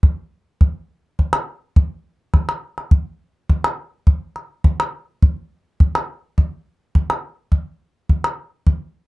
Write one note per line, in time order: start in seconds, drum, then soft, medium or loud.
0.03 calabash thump medium
0.61 calabash thump medium
1.19 calabash thump medium
1.33 calabash click soft
1.76 calabash thump medium
2.34 calabash thump medium
2.34 calabash click soft
2.49 calabash click soft
2.78 calabash click soft
2.91 calabash thump medium
3.49 calabash thump medium
3.64 calabash click soft
4.07 calabash thump medium
4.36 calabash click soft
4.64 calabash thump medium
4.80 calabash click soft
5.22 calabash thump medium
5.80 calabash thump medium
5.95 calabash click soft
6.38 calabash thump medium
6.95 calabash thump medium
7.10 calabash click soft
7.52 calabash thump medium
8.09 calabash thump medium
8.24 calabash click soft
8.67 calabash thump medium